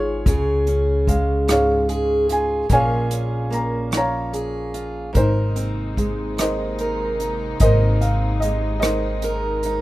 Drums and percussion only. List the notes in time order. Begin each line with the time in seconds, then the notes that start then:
0.26 kick, closed hi-hat
0.67 closed hi-hat
1.07 kick, closed hi-hat
1.48 cross-stick, closed hi-hat
1.89 closed hi-hat
2.29 closed hi-hat
2.70 kick, closed hi-hat
3.11 closed hi-hat
3.52 closed hi-hat
3.92 cross-stick, closed hi-hat
4.34 closed hi-hat
4.74 closed hi-hat
5.15 kick, closed hi-hat
5.56 closed hi-hat
5.97 kick, closed hi-hat
6.38 cross-stick, closed hi-hat
6.79 closed hi-hat
7.20 closed hi-hat
7.60 kick, closed hi-hat
8.01 closed hi-hat
8.42 closed hi-hat
8.82 cross-stick, closed hi-hat
9.22 closed hi-hat
9.63 closed hi-hat